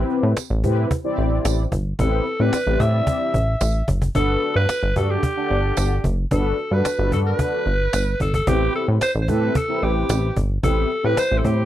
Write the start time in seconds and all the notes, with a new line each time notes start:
Already playing: C4 E4 G4 B4
0.10 cajon slap
0.23 A2
0.37 cajon slap, tambourine
0.50 A1
0.63 A2 C4 E4 G4 B4, cajon bass
0.91 cajon bass
1.04 C4 E4 G4 D5
1.18 A1, cajon slap
1.45 A1, cajon slap, tambourine
1.72 G1, cajon bass
1.99 A1 C4 E4 G4 A4 B4, cajon bass
2.26 cajon slap
2.39 A2 C4 E4 G4 B4 D5
2.53 cajon slap, tambourine
2.66 A1 C4 E4 G4 D5
2.80 A2 E5, cajon bass
3.07 cajon bass
3.34 A1, cajon bass
3.61 A1, cajon slap, tambourine
3.88 F#1, cajon bass
4.02 cajon bass
4.15 G1 D4 F#4 A4 B4, cajon bass
4.42 cajon slap
4.56 G2 B4
4.69 cajon slap, tambourine
4.83 G1
4.96 G2 D4 F#4 A4 D5, cajon bass
5.11 G4
5.23 cajon bass
5.36 D4 A4 D5 F#5
5.50 G1, cajon slap
5.77 G1, cajon slap, tambourine
6.04 F#1, cajon bass
6.31 G1 D4 F#4 A4 B4, cajon bass
6.58 cajon slap
6.71 G2 D4 F#4 A4 B4
6.85 cajon slap, tambourine
6.98 G1 D4 F#4 A4 B4
7.12 G2 A4, cajon bass
7.27 B4
7.39 cajon bass
7.66 G1, cajon slap
7.93 G1, cajon slap, tambourine
8.20 G1 A4, cajon bass
8.34 A4, cajon bass
8.47 A1 C4 E4 G4 B4, cajon bass
8.74 A4, cajon slap
8.88 A2
9.01 C5, cajon slap, tambourine
9.15 A1
9.22 C5
9.28 A2 C4 E4 G4 A4 B4, cajon bass
9.55 A4, cajon bass
9.68 C4 E4 G4 A#4
9.75 B4
9.82 A1 G4, cajon slap
10.09 A1, cajon slap, tambourine
10.36 G1, cajon bass
10.62 A1 C4 E4 G4 A4 B4, cajon bass
10.91 cajon slap
11.03 A2 C4 E4 G4 B4
11.17 C5, cajon slap, tambourine
11.30 A1 C4 E4 G4 C5
11.38 A4
11.44 A2 G4, cajon bass